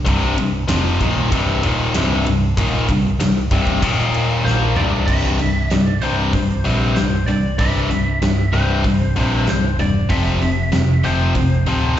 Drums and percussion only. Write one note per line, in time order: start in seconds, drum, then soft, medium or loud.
0.06 kick loud
0.06 ride medium
0.38 ride medium
0.68 snare loud
0.68 ride loud
1.01 kick medium
1.01 ride medium
1.32 kick loud
1.32 ride medium
1.63 ride medium
1.94 snare loud
1.94 ride medium
2.26 ride medium
2.57 kick loud
2.57 ride loud
2.89 kick medium
2.89 ride medium
3.20 snare loud
3.20 ride medium
3.51 kick medium
3.51 ride medium
3.67 kick medium
3.82 kick loud
3.82 ride medium
4.14 ride medium
4.47 snare medium
4.76 mid tom medium
4.93 floor tom medium
5.08 kick loud
5.08 crash medium
5.39 open hi-hat soft
5.71 snare loud
5.71 open hi-hat medium
6.01 open hi-hat soft
6.33 kick loud
6.33 open hi-hat medium
6.65 open hi-hat medium
6.96 snare loud
6.96 open hi-hat medium
7.27 open hi-hat soft
7.59 kick loud
7.59 open hi-hat medium
7.91 open hi-hat soft
8.22 snare loud
8.22 open hi-hat medium
8.53 open hi-hat soft
8.84 kick loud
8.84 open hi-hat medium
9.16 open hi-hat soft
9.47 snare loud
9.47 open hi-hat medium
9.79 open hi-hat soft
10.10 kick loud
10.10 open hi-hat medium
10.42 open hi-hat soft
10.72 snare loud
10.72 open hi-hat medium
11.04 open hi-hat soft
11.35 kick loud
11.35 open hi-hat medium
11.66 open hi-hat soft